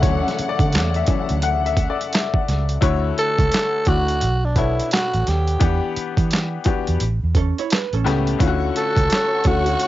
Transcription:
Already playing: C#3 A3 D5 E5 F#5
0.01 D2 E3 F#3 C#4 C#5, kick, closed hi-hat
0.28 snare, closed hi-hat
0.39 muted fingered electric bass stroke, closed hi-hat
0.49 D5
0.59 D3, kick, closed hi-hat
0.72 E2, snare, clap, closed hi-hat
0.94 E5, closed hi-hat
1.06 E3 F#3 C#4, kick, closed hi-hat
1.29 D2, closed hi-hat
1.42 F#5, closed hi-hat
1.66 E5, closed hi-hat
1.77 kick, closed hi-hat
1.90 D5
2.01 closed hi-hat
2.13 snare, clap, closed hi-hat
2.34 kick
2.48 C#2, snare, closed hi-hat
2.69 closed hi-hat
2.81 D2 D3 A3 E4 F#4 C#5, kick, closed hi-hat
3.18 A4, closed hi-hat
3.39 C#2, kick, closed hi-hat
3.52 snare, clap, closed hi-hat
3.85 D2 D3 A3 E4 F#4 D5, kick, closed hi-hat
4.08 closed hi-hat
4.21 B1, closed hi-hat
4.45 D4
4.56 B2 B3 D4 E4 A4 C#5, kick, closed hi-hat
4.79 closed hi-hat
4.91 F#4, snare, clap, closed hi-hat
5.14 A1, closed hi-hat
5.27 D#2 G4, snare, closed hi-hat
5.47 closed hi-hat
5.59 E2 E3 B3 D4 G4 F#5, kick, closed hi-hat
5.96 muted fingered electric bass stroke, closed hi-hat
6.17 E3, kick, closed hi-hat
6.31 snare, clap, closed hi-hat
6.64 E3 B3 D4 F#4 G4, muted fingered electric bass stroke, kick, closed hi-hat
6.87 E2, closed hi-hat
7.00 A1, closed hi-hat
7.23 E2
7.35 C#4 A4, kick, closed hi-hat
7.58 E4 C#5, closed hi-hat
7.70 B4, snare, clap, closed hi-hat
7.93 A1 C#4 A4, closed hi-hat
8.04 C#2 A2 A3 B3 C#4 G4, snare, closed hi-hat
8.27 closed hi-hat
8.39 D2 D3 A3 C#4 E4 F4 F#4 C#5 C#6, kick, closed hi-hat
8.47 F#4
8.76 A4, closed hi-hat
8.97 C#2, kick, closed hi-hat
9.10 snare, clap, closed hi-hat
9.44 D2 D3 A3 C#4 E4 F#4 A4, kick, closed hi-hat
9.66 closed hi-hat
9.80 closed hi-hat

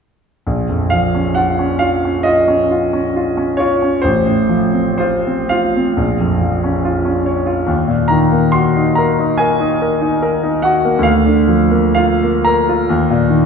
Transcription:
0.47 A#1
0.69 F2
0.90 F3 F5
1.15 C#4
1.34 F4 F#5
1.59 C#4
1.79 F4 F5
2.05 C#4
2.23 F4 D#5
2.48 C#4
2.71 F4
2.93 C#4
3.16 F4
3.37 C#4
3.57 F4 C#5
3.82 C#4
4.02 A1 C5
4.26 A2
4.49 F3
4.73 C4
4.98 F4 C5
5.26 C4
5.49 F4 F5
5.76 C4
5.97 A#1
6.20 F2
6.41 F3
6.64 C#4
6.85 F4
7.05 C#4
7.26 C#5
7.46 F4
7.67 D#2
7.88 A#2
8.08 D#3 A#5
8.32 A#3
8.52 F#4 C6
8.76 D#4
8.95 A#4 A#5
9.19 D#4
9.38 A#4 G#5
9.60 D#4
9.82 A#4
10.02 D#4
10.22 A#4
10.43 D#4
10.62 F#4 F#5
10.85 A#3
10.99 D2
11.03 F5
11.26 D3
11.48 F3
11.71 A#3
11.95 F4 F5
12.23 A#3
12.45 A#4 A#5
12.69 F4
12.89 D#2
13.10 A#2
13.30 D#3

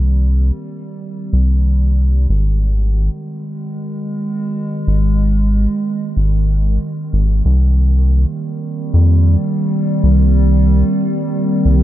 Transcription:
Already playing: C2 D#3 G3 A#3 C4 G4
1.33 C2
2.29 G#1 D#3
2.60 G#3
4.87 G#1
6.17 G#1
7.13 G#1
7.45 C2
7.68 A#3
7.81 G3
7.95 G4
8.20 C4
8.94 F2
10.03 C2
11.65 C2

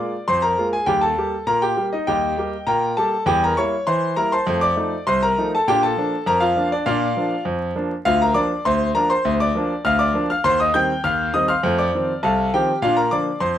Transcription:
Already playing: G#3 A#3 F4 D5 D6
0.28 F2 C5 C6
0.42 A#4 A#5
0.58 G#3 A#3 F4
0.73 G#4 G#5
0.86 D#2 G3 G4 G5
1.01 A4 A5
1.18 G3 A#3 G4
1.47 A#2 A#4 A#5
1.62 G4 G5
1.77 G3 A#3 G4
1.93 D#4 D#5
2.07 D#2 G3 G4 D#5 G5
2.38 G3 A#3 G4
2.67 A#2 A#4 G5 A#5
2.97 G3 A#3 G4 A4 A5
3.26 E2 G3 G4 G5
3.44 A#4 A#5
3.57 G3 A#3 E4 C#5 C#6
3.87 E3 C5 C6
4.16 G3 A#3 E4 A#4 A#5
4.32 C5 A5 C6
4.47 F2 A3
4.61 D5 D6
4.76 F3 A3 D#4
5.07 C2 C5 C6
5.23 A#4 A#5
5.38 F3 A3 D#4
5.55 A4 A5
5.68 A#2 D4 G4 G5
5.83 A4 A5
5.97 F3 A#3 D4
6.26 F2 A#4 A#5
6.40 F4 F5
6.56 F3 A#3 D4
6.72 D4 D5
6.86 A#2 D4 F4 D5 F5
7.17 F3 A#3 D4
7.45 F2
7.76 F3 A#3 D4
8.05 D2 F4 F5
8.22 A#4 A#5
8.34 F3 A#3 D4 D5 D6
8.65 D2 C5 C6
8.95 F3 A#3 D4 A#4 A#5
9.10 C5 C6
9.25 D2
9.40 D5 D6
9.55 F3 A#3 D4
9.85 D2 F5 F6
9.99 D5 D6
10.14 F3 A#3 D4
10.30 F5 F6
10.44 D#2 C5 C6
10.60 D#5 D#6
10.74 D#3 G3 C4 G5 G6
11.04 D#2 F5 F6
11.34 D#3 G3 C4 D#5 D#6
11.48 F5 C6 F6
11.63 F2 A3
11.79 D5 D6
11.95 D#3 F3 C4
12.23 C2 A4 F5 A5
12.54 D#3 F3 C4 G4 G5
12.82 A#2 D4 F4 F5
12.97 A#4 A#5
13.11 D3 F3 A#3 D5 D6
13.40 F2 C5 C6

